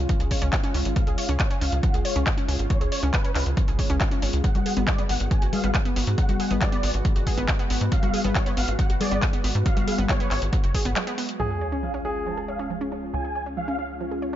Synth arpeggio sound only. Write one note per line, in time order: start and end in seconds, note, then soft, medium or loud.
0.09 0.13 F3 medium
0.20 0.26 G#4 medium
0.31 0.40 C#5 medium
0.42 0.48 C#4 loud
0.53 0.56 F3 medium
0.64 0.70 C#4 loud
0.74 0.83 C#4 medium
0.96 1.00 F3 medium
1.07 1.13 G#4 medium
1.18 1.27 C#5 medium
1.29 1.35 C#4 loud
1.40 1.43 F3 medium
1.50 1.56 C#4 loud
1.61 1.70 C#4 medium
1.83 1.87 F3 medium
1.94 2.00 G#4 medium
2.05 2.14 C#5 medium
2.16 2.22 C#4 loud
2.27 2.30 F3 medium
2.37 2.43 C#4 loud
2.48 2.57 C#4 medium
2.70 2.74 F3 medium
2.81 2.87 G#4 medium
2.92 3.01 C#5 medium
3.03 3.09 C#4 loud
3.14 3.17 F3 medium
3.25 3.30 C#4 loud
3.35 3.44 C#4 medium
3.57 3.61 F3 medium
3.68 3.74 G#4 medium
3.79 3.88 C#5 medium
3.90 3.96 C#4 loud
4.01 4.04 F3 medium
4.12 4.17 C#4 loud
4.22 4.31 C#4 medium
4.44 4.48 F#3 medium
4.55 4.61 F#4 medium
4.66 4.75 G#4 medium
4.77 4.83 B3 loud
4.88 4.91 F#3 medium
4.98 5.04 B3 loud
5.09 5.18 B3 medium
5.31 5.35 F#3 medium
5.42 5.48 F#4 medium
5.53 5.62 G#4 medium
5.64 5.70 B3 loud
5.75 5.78 F#3 medium
5.85 5.91 B3 loud
5.96 6.05 B3 medium
6.18 6.22 F#3 medium
6.29 6.35 F#4 medium
6.40 6.49 G#4 medium
6.51 6.57 B3 loud
6.62 6.65 F#3 medium
6.72 6.78 B3 loud
6.83 6.92 B3 medium
7.05 7.09 F#3 medium
7.16 7.22 F#4 medium
7.27 7.36 G#4 medium
7.38 7.44 B3 loud
7.48 7.52 F#3 medium
7.59 7.65 B3 loud
7.70 7.79 B3 medium
7.92 7.95 F#3 medium
8.03 8.09 F#4 medium
8.14 8.23 G#4 medium
8.24 8.30 B3 loud
8.35 8.39 F#3 medium
8.46 8.52 B3 loud
8.57 8.66 B3 medium
8.79 8.82 F#3 medium
8.90 8.96 F#4 medium
9.01 9.10 G#4 medium
9.11 9.17 B3 loud
9.22 9.26 F#3 medium
9.33 9.39 B3 loud
9.44 9.53 B3 medium
9.66 9.69 F#3 medium
9.77 9.83 F#4 medium
9.88 9.96 G#4 medium
9.98 10.04 B3 loud
10.09 10.13 F#3 medium
10.20 10.26 B3 loud
10.31 10.40 B3 medium
10.53 10.56 F#3 medium
10.64 10.70 F#4 medium
10.74 10.83 G#4 medium
10.85 10.91 B3 loud
10.96 11.00 F#3 medium
11.07 11.13 B3 loud
11.18 11.27 B3 medium
11.40 11.43 F3 medium
11.51 11.57 G#4 medium
11.61 11.70 C#5 medium
11.72 11.78 C#4 loud
11.83 11.87 F3 medium
11.94 12.00 C#4 loud
12.05 12.14 C#4 medium
12.27 12.30 F3 medium
12.38 12.43 G#4 medium
12.48 12.57 C#5 medium
12.59 12.65 C#4 medium
12.70 12.74 F3 medium
12.81 12.87 C#4 loud
12.92 13.01 C#4 medium
13.14 13.17 F3 medium
13.24 13.30 G#4 medium
13.35 13.44 C#5 medium
13.46 13.52 C#4 medium
13.57 13.61 F3 medium
13.68 13.74 C#4 loud
13.79 13.88 C#4 medium
14.01 14.04 F3 medium
14.11 14.17 G#4 medium
14.22 14.31 C#5 medium